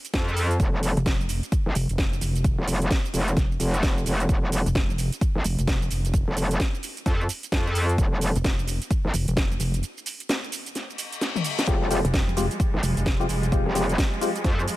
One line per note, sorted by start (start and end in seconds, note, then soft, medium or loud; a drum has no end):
0.05 closed hi-hat medium
0.05 shaker soft
0.14 0.58 F2 loud
0.14 kick loud
0.14 snare loud
0.14 closed hi-hat medium
0.14 shaker soft
0.28 shaker soft
0.37 open hi-hat medium
0.37 shaker medium
0.51 closed hi-hat medium
0.51 shaker soft
0.60 0.95 F1 loud
0.60 kick loud
0.60 closed hi-hat medium
0.60 shaker soft
0.83 open hi-hat loud
0.83 shaker medium
0.97 1.41 F1 loud
0.97 closed hi-hat medium
0.97 shaker soft
1.06 kick loud
1.06 snare loud
1.06 closed hi-hat medium
1.06 shaker soft
1.21 shaker soft
1.29 open hi-hat loud
1.29 shaker medium
1.43 closed hi-hat medium
1.43 shaker soft
1.52 kick loud
1.52 closed hi-hat medium
1.52 shaker soft
1.66 1.74 G#1 loud
1.75 1.87 F1 loud
1.75 open hi-hat loud
1.75 shaker medium
1.89 2.20 F1 loud
1.89 closed hi-hat medium
1.89 shaker soft
1.98 kick loud
1.98 snare loud
1.98 closed hi-hat medium
1.98 shaker soft
2.13 shaker soft
2.21 2.56 F1 loud
2.21 open hi-hat loud
2.21 shaker medium
2.36 closed hi-hat medium
2.36 shaker soft
2.44 kick loud
2.44 closed hi-hat medium
2.44 shaker soft
2.59 2.89 F1 loud
2.68 open hi-hat loud
2.68 shaker medium
2.82 closed hi-hat medium
2.82 shaker soft
2.91 kick loud
2.91 snare loud
2.91 closed hi-hat medium
2.91 shaker soft
3.05 shaker soft
3.14 3.35 F1 medium
3.14 open hi-hat loud
3.14 shaker medium
3.28 closed hi-hat medium
3.28 shaker soft
3.37 3.58 F1 loud
3.37 kick loud
3.37 snare soft
3.37 closed hi-hat medium
3.37 shaker soft
3.52 shaker soft
3.60 4.04 F1 medium
3.60 open hi-hat loud
3.60 shaker medium
3.74 closed hi-hat medium
3.74 shaker soft
3.83 kick loud
3.83 snare loud
3.83 closed hi-hat medium
3.83 shaker soft
3.98 shaker soft
4.06 4.28 F1 loud
4.06 open hi-hat loud
4.06 shaker medium
4.20 closed hi-hat medium
4.20 shaker soft
4.29 4.64 F1 loud
4.29 kick loud
4.29 closed hi-hat medium
4.29 shaker soft
4.52 open hi-hat loud
4.52 shaker medium
4.66 5.10 F1 medium
4.66 closed hi-hat medium
4.66 shaker soft
4.75 kick loud
4.75 snare loud
4.75 closed hi-hat soft
4.75 shaker soft
4.90 shaker soft
4.98 open hi-hat loud
4.98 shaker medium
5.12 closed hi-hat medium
5.12 shaker soft
5.21 kick loud
5.21 closed hi-hat medium
5.21 shaker soft
5.35 5.43 G#1 loud
5.44 5.56 F1 loud
5.44 open hi-hat loud
5.44 shaker medium
5.58 5.89 F1 loud
5.58 closed hi-hat medium
5.58 shaker soft
5.67 kick loud
5.67 snare loud
5.67 closed hi-hat medium
5.67 shaker soft
5.82 shaker soft
5.91 6.26 F1 loud
5.91 open hi-hat medium
5.91 shaker medium
6.05 closed hi-hat medium
6.05 shaker soft
6.14 kick loud
6.14 closed hi-hat medium
6.14 shaker soft
6.28 6.58 F1 loud
6.37 open hi-hat loud
6.37 shaker medium
6.51 closed hi-hat medium
6.51 shaker soft
6.60 kick loud
6.60 snare loud
6.60 closed hi-hat medium
6.60 shaker soft
6.75 shaker soft
6.83 open hi-hat medium
6.83 shaker medium
6.97 closed hi-hat medium
6.97 shaker soft
7.06 7.28 F2 loud
7.06 kick loud
7.06 snare soft
7.06 closed hi-hat medium
7.06 shaker soft
7.21 shaker soft
7.29 open hi-hat loud
7.29 shaker medium
7.43 closed hi-hat medium
7.43 shaker soft
7.52 7.97 F2 loud
7.52 kick loud
7.52 snare loud
7.52 closed hi-hat medium
7.52 shaker soft
7.67 shaker soft
7.75 open hi-hat medium
7.75 shaker medium
7.89 closed hi-hat medium
7.89 shaker soft
7.98 8.33 F1 loud
7.98 kick loud
7.98 closed hi-hat medium
7.98 shaker soft
8.21 open hi-hat loud
8.21 shaker medium
8.35 8.79 F1 medium
8.35 closed hi-hat medium
8.35 shaker soft
8.44 kick loud
8.44 snare loud
8.44 closed hi-hat medium
8.44 shaker soft
8.59 shaker soft
8.68 open hi-hat medium
8.68 shaker medium
8.82 closed hi-hat medium
8.82 shaker soft
8.91 kick loud
8.91 closed hi-hat medium
8.91 shaker soft
9.05 9.12 G#1 loud
9.14 9.26 F1 loud
9.14 open hi-hat loud
9.14 shaker medium
9.28 9.58 F1 loud
9.28 closed hi-hat medium
9.28 shaker soft
9.37 kick loud
9.37 snare loud
9.37 closed hi-hat medium
9.37 shaker soft
9.52 shaker soft
9.60 9.83 F1 medium
9.60 open hi-hat medium
9.60 shaker medium
9.74 closed hi-hat medium
9.74 shaker soft
9.83 closed hi-hat medium
9.83 shaker soft
9.98 shaker soft
10.06 open hi-hat loud
10.06 shaker medium
10.20 closed hi-hat medium
10.20 shaker soft
10.29 snare loud
10.29 closed hi-hat medium
10.29 shaker soft
10.44 shaker soft
10.52 open hi-hat medium
10.52 shaker medium
10.66 closed hi-hat medium
10.66 shaker soft
10.75 snare soft
10.75 closed hi-hat medium
10.75 reverse cymbal medium
10.75 shaker soft
10.90 shaker soft
10.98 open hi-hat loud
10.98 shaker medium
11.12 closed hi-hat medium
11.12 shaker soft
11.21 snare medium
11.21 closed hi-hat medium
11.21 shaker soft
11.36 high tom medium
11.36 shaker soft
11.44 open hi-hat medium
11.44 shaker medium
11.59 snare medium
11.59 closed hi-hat medium
11.59 shaker soft
11.67 12.02 F1 loud
11.67 14.77 F3 medium
11.67 14.77 G3 medium
11.67 14.77 G#3 loud
11.67 11.88 G#3 medium
11.67 11.88 C4 medium
11.67 11.88 F4 medium
11.67 11.88 G4 loud
11.67 kick loud
11.67 closed hi-hat medium
11.67 shaker soft
11.91 12.00 G#3 medium
11.91 12.00 C4 medium
11.91 12.00 F4 medium
11.91 12.00 G4 loud
11.91 open hi-hat loud
11.91 shaker medium
12.05 12.49 F1 loud
12.05 closed hi-hat medium
12.05 shaker soft
12.14 kick loud
12.14 snare loud
12.14 closed hi-hat medium
12.14 shaker soft
12.29 shaker soft
12.37 12.46 G#3 loud
12.37 12.46 C4 medium
12.37 12.46 F4 medium
12.37 12.46 G4 loud
12.37 open hi-hat medium
12.37 shaker medium
12.51 closed hi-hat medium
12.51 shaker soft
12.60 kick loud
12.60 closed hi-hat medium
12.60 shaker soft
12.74 12.81 G#1 loud
12.83 12.95 F1 loud
12.83 open hi-hat loud
12.83 shaker medium
12.97 13.28 F1 loud
12.97 closed hi-hat medium
12.97 shaker soft
13.06 kick loud
13.06 snare loud
13.06 closed hi-hat medium
13.06 shaker soft
13.20 13.26 G#3 medium
13.20 13.26 C4 medium
13.20 13.26 F4 medium
13.20 13.26 G4 loud
13.20 shaker soft
13.29 13.64 F1 loud
13.29 open hi-hat medium
13.29 shaker medium
13.43 closed hi-hat medium
13.43 shaker soft
13.52 13.73 G#3 medium
13.52 13.73 C4 medium
13.52 13.73 F4 medium
13.52 13.73 G4 loud
13.52 kick loud
13.52 closed hi-hat medium
13.52 shaker soft
13.66 13.97 F1 medium
13.75 13.84 G#3 medium
13.75 13.84 C4 medium
13.75 13.84 F4 medium
13.75 13.84 G4 loud
13.75 open hi-hat loud
13.75 shaker medium
13.89 closed hi-hat medium
13.89 shaker soft
13.98 kick loud
13.98 snare loud
13.98 closed hi-hat medium
13.98 shaker soft
14.13 shaker soft
14.21 14.30 G#3 medium
14.21 14.30 C4 medium
14.21 14.30 F4 medium
14.21 14.30 G4 loud
14.21 open hi-hat loud
14.21 shaker medium
14.36 closed hi-hat medium
14.36 shaker soft
14.44 14.66 F2 loud
14.44 kick loud
14.44 snare soft
14.44 closed hi-hat medium
14.44 shaker soft
14.59 shaker soft
14.68 open hi-hat loud
14.68 shaker medium